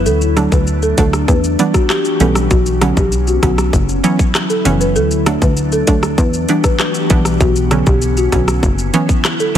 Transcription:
Already playing: ambient pad F#3
0.06 analog synth bass D2, ambient pad A3 D4, marimba A4, shaker
0.21 shaker
0.36 synth pluck D3 F#3 A3 D4, cross-stick, closed hi-hat, shaker
0.52 analog synth bass D2, marimba B4, kick, shaker
0.67 shaker
0.82 marimba A4, shaker
0.98 analog synth bass D2, synth pluck D3 F#3 A3 D4, marimba A4, kick, closed hi-hat, shaker
1.13 cross-stick, shaker
1.28 analog synth bass E2, ambient pad E3 B3 F#4 G4, marimba B4, kick, shaker
1.44 shaker
1.59 synth pluck E3 G3 B3 D4, closed hi-hat, shaker
1.74 marimba F#4, kick, cross-stick, shaker
1.90 marimba G4, cross-stick, clap, shaker
2.05 shaker
2.20 analog synth bass B1, synth pluck E3 G3 B3 C#4, marimba A4, closed hi-hat, shaker
2.35 cross-stick, shaker
2.51 analog synth bass B1, ambient pad D3 C#4, marimba F#4, kick, shaker
2.66 shaker
2.81 synth pluck D3 F#3 B3 C#4, cross-stick, closed hi-hat, shaker
2.97 analog synth bass B1, marimba G4, kick, shaker
3.12 shaker
3.27 marimba F#4, shaker
3.43 analog synth bass B1, synth pluck D3 F#3 B3 C#4, marimba F#4, kick, cross-stick, closed hi-hat, shaker
3.58 cross-stick, shaker
3.73 analog synth bass F#1, ambient pad F#3 E4, kick, shaker
3.89 shaker
4.04 synth pluck E3 F#3 B3 C#4, closed hi-hat, shaker
4.19 kick, shaker
4.35 cross-stick, clap, shaker
4.50 marimba A4, shaker
4.65 analog synth bass F#1, synth pluck E3 F#3 B3 C#4, closed hi-hat, shaker
4.81 marimba B4, shaker
4.96 analog synth bass D2, ambient pad A3 D4, marimba A4, shaker
5.11 shaker
5.26 synth pluck D3 F#3 A3 D4, cross-stick, closed hi-hat, shaker
5.42 analog synth bass D2, marimba B4, kick, shaker
5.57 shaker
5.72 marimba A4, shaker
5.87 analog synth bass D2, synth pluck D3 F#3 A3 D4, marimba A4, kick, closed hi-hat, shaker
6.03 cross-stick, shaker
6.18 analog synth bass E2, ambient pad E3 B3 F#4 G4, marimba B4, kick, shaker
6.34 shaker
6.49 synth pluck E3 G3 B3 D4, closed hi-hat, shaker
6.64 marimba B4, kick, cross-stick, shaker
6.79 cross-stick, clap, shaker
6.95 shaker
7.10 analog synth bass B1, synth pluck E3 G3 B3 D4, kick, closed hi-hat, shaker
7.25 cross-stick, shaker
7.40 analog synth bass B1, ambient pad D3 C#4, marimba F#4, kick, shaker
7.56 shaker
7.71 synth pluck D3 F#3 B3 C#4, cross-stick, closed hi-hat, shaker
7.87 analog synth bass B1, marimba G4, kick, shaker
8.02 shaker
8.17 marimba F#4, shaker
8.32 analog synth bass B1, synth pluck D3 F#3 B3 C#4, marimba F#4, kick, cross-stick, closed hi-hat, shaker
8.48 cross-stick, shaker
8.63 analog synth bass F#1, ambient pad F#3 E4, kick, shaker
8.79 shaker
8.94 synth pluck E3 F#3 B3 C#4, closed hi-hat, shaker
9.09 kick, shaker
9.25 cross-stick, clap, shaker
9.40 marimba A4, shaker

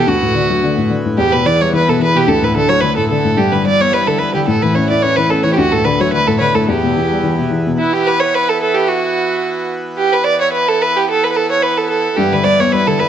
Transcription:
Already playing: accordion E3 B3
0.07 upright piano D2, fiddle F#4
0.22 upright piano A2
0.35 upright piano D3
0.50 upright piano F#3
0.64 upright piano D3
0.77 upright piano A2
0.90 upright piano D3
1.05 upright piano A2
1.18 upright piano E2, fiddle G4
1.32 upright piano B2, fiddle B4
1.46 upright piano E3, fiddle D5
1.61 upright piano G3, fiddle C#5
1.73 upright piano E3, fiddle B4
1.88 upright piano B2, fiddle A4
2.00 upright piano E3, fiddle B4
2.15 upright piano B2, fiddle G4
2.27 upright piano D2, fiddle A4
2.42 upright piano A2, fiddle B4
2.55 upright piano D3, fiddle A4
2.68 upright piano F#3, fiddle C#5
2.80 upright piano D3, fiddle B4
2.96 upright piano A2, fiddle A4
3.09 upright piano D3, fiddle A4
3.24 upright piano A2
3.37 upright piano G2, accordion E3 B3, fiddle G4
3.52 upright piano D3, fiddle B4
3.65 upright piano G3, fiddle D5
3.81 upright piano B3, fiddle C#5
3.92 upright piano G3, fiddle B4
4.07 upright piano D3, fiddle A4
4.18 upright piano G3, fiddle B4
4.34 upright piano D3, fiddle G4
4.47 upright piano A2, fiddle A4
4.62 upright piano E3, fiddle B4
4.75 upright piano C#4, fiddle C#5
4.89 upright piano E4, fiddle D5
5.02 upright piano C#4, fiddle C#5
5.16 upright piano E3, fiddle B4
5.30 upright piano C#4, fiddle A4
5.43 upright piano E3, fiddle C#5
5.53 fiddle F#4 G4
5.58 upright piano D2
5.72 upright piano A2, fiddle A4
5.84 upright piano D3, fiddle B4
6.00 upright piano F#3, fiddle C#5
6.13 upright piano D3, fiddle B4
6.27 upright piano A2, fiddle A4
6.39 upright piano D3, fiddle B4 C#5
6.55 upright piano A2, fiddle A4
6.68 upright piano E2, fiddle G4
6.84 upright piano B2
6.96 upright piano E3
7.11 upright piano G3
7.24 upright piano E3
7.38 upright piano B2
7.50 upright piano E3
7.67 upright piano B2
7.79 accordion E3 B3, fiddle E4
7.93 fiddle G4
8.06 fiddle B4
8.20 fiddle C#5
8.34 fiddle B4
8.49 fiddle A4
8.62 fiddle A4
8.74 fiddle G4
8.87 fiddle F#4
9.97 fiddle G4
10.12 fiddle B4
10.24 fiddle D5
10.41 fiddle C#5
10.52 fiddle B4
10.68 fiddle A4
10.81 fiddle B4
10.96 fiddle G4
11.10 fiddle A4
11.23 fiddle B4
11.31 fiddle B4
11.36 fiddle A4
11.51 fiddle C#5
11.62 fiddle B4
11.77 fiddle A4
11.89 fiddle A4
12.16 upright piano G2, accordion E3 B3, fiddle G4
12.32 upright piano D3, fiddle B4
12.44 upright piano G3, fiddle D5
12.60 upright piano B3, fiddle C#5
12.72 upright piano G3, fiddle B4
12.87 upright piano D3, fiddle A4
12.99 upright piano G3, fiddle B4

